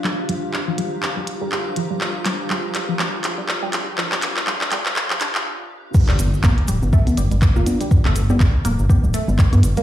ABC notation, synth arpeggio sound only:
X:1
M:4/4
L:1/16
Q:"Swing 16ths" 1/4=122
K:Gm
V:1 name="Synth arpeggio sound" clef=bass
G, z G, z2 F, G, z2 G, z G, z2 F, G, | z2 G, z G, z2 F, G, z2 G, z G, z2 | F, G, z2 G, z G, z2 F, D z4 z | z G, z2 B, z G, z A, z G, z2 B, z G, |
z A, z G, z2 B, z G, z A, z G, z2 B, |]